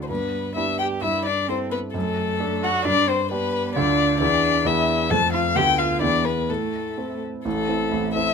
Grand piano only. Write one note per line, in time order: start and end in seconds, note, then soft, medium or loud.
0.00 0.12 D2 soft
0.00 0.12 A2 soft
0.00 0.12 D4 soft
0.00 0.12 F#4 soft
0.09 0.55 G2 soft
0.56 0.98 B3 soft
0.56 0.98 D4 soft
0.56 0.99 G4 soft
1.01 1.47 G2 soft
1.49 1.91 C4 soft
1.49 1.91 E4 soft
1.49 1.91 A4 soft
1.94 2.39 F#2 medium
2.40 2.82 D4 soft
2.40 2.82 A4 soft
2.85 3.29 G2 medium
3.31 3.72 D4 soft
3.31 3.72 G4 soft
3.76 4.19 D2 medium
3.76 4.17 D4 soft
3.76 4.17 F4 soft
3.76 4.17 A4 soft
4.20 4.63 E2 medium
4.20 4.61 B3 soft
4.20 4.61 E4 soft
4.20 4.62 G#4 medium
4.65 5.09 E2 medium
4.65 5.06 B3 soft
4.65 5.06 D4 soft
4.65 5.07 G#4 soft
5.11 5.54 F2 medium
5.11 5.51 A3 soft
5.11 5.52 C4 soft
5.11 5.52 A4 soft
5.55 6.00 D2 medium
5.55 5.97 B3 soft
5.55 5.98 F4 soft
5.55 5.98 A4 soft
6.01 6.47 E2 medium
6.01 6.45 B3 soft
6.01 6.45 E4 soft
6.01 6.45 G#4 soft
6.49 6.96 A2 medium
6.97 7.41 C4 soft
6.97 7.41 E4 soft
6.97 7.42 A4 soft
7.45 7.68 A1 medium
7.45 7.68 A2 medium
7.68 7.89 C4 soft
7.68 7.90 E4 soft
7.68 7.90 A4 soft
7.91 8.14 A1 medium
7.91 8.14 A2 medium
8.15 8.34 C4 soft
8.15 8.34 E4 soft
8.15 8.34 A4 soft